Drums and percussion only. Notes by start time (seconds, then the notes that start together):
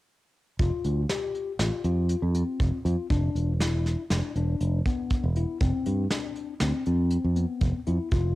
0.59 kick, closed hi-hat
0.84 closed hi-hat
1.09 snare, closed hi-hat
1.35 closed hi-hat
1.59 snare, closed hi-hat
1.84 closed hi-hat
2.09 closed hi-hat
2.35 closed hi-hat
2.60 kick, closed hi-hat
2.85 closed hi-hat
3.10 kick, closed hi-hat
3.36 closed hi-hat
3.60 snare, closed hi-hat
3.86 snare, closed hi-hat
4.10 snare, closed hi-hat
4.36 closed hi-hat
4.60 closed hi-hat
4.86 kick, closed hi-hat
5.10 kick, closed hi-hat
5.36 closed hi-hat
5.61 kick, closed hi-hat
5.86 closed hi-hat
6.11 snare, closed hi-hat
6.36 closed hi-hat
6.60 snare, closed hi-hat
6.86 closed hi-hat
7.11 closed hi-hat
7.36 closed hi-hat
7.61 kick, closed hi-hat
7.87 closed hi-hat
8.11 kick, closed hi-hat